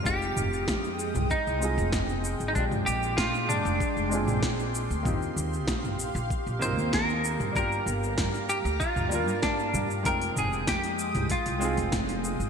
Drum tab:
HH |----------------|----------------|----------------|----------------|
SH |xxxxxxxxxxxxxxxx|xxxxxxxxxxxxxxxx|xxxxxxxxxxxxxxxx|xxxxxxxxxxxxxxxx|
SD |----o-------o---|----o-------o---|----o-------o---|----o-------o---|
T2 |--o----o----o---|-o----o----o----|o----o----o----o|----o----o----o-|
BD |o---o---o---o---|o---o---o---o---|o---o---o---o---|o---o---o---o---|

HH |oo--oo-ooo-ooo--|
SH |xxxxxxxxxxxxxxxx|
SD |----o-------o---|
T2 |--o----o----o---|
BD |o---o---o---o---|